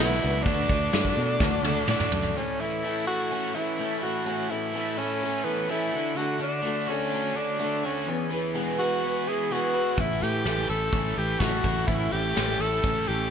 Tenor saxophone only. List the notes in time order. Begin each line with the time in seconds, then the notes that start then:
Already playing: E4
0.43 D4
1.89 D4
2.37 C#4
2.60 E4
3.07 F#4
3.55 E4
4.03 F#4
4.50 E4
4.98 C#4
5.44 B3
5.70 E4
6.16 F#4
6.41 D4
6.89 C#4
7.37 D4
7.86 C#4
8.79 F#4
9.28 G#4
9.52 F#4
10.00 E4
10.22 G4
10.70 A4
11.18 G4
11.40 F#4
11.87 E4
12.12 G4
12.61 A4
13.07 G4